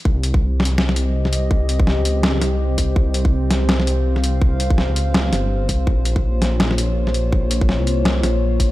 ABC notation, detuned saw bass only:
X:1
M:4/4
L:1/16
Q:"Swing 16ths" 1/4=165
K:Cphr
V:1 name="Detuned saw bass" clef=bass
C,,16- | C,,4- C,, D,,4- D,, C,,4 C,,2 | C,,16- | C,,4- C,, D,,4- D,, G,,,4 C,,2 |
B,,,16- | B,,,4- B,,, C,,4- C,, B,,,4 B,,,2 |]